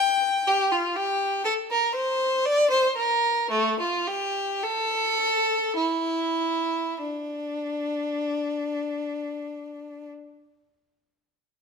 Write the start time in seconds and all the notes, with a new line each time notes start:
Already playing: G5
0.47 G4
0.72 F4
0.96 G4
1.45 A4
1.71 A#4
1.95 C5
2.46 D5
2.70 C5
2.96 A#4
3.51 A3
3.80 F4
4.08 G4
4.63 A4
5.76 E4
7.01 D4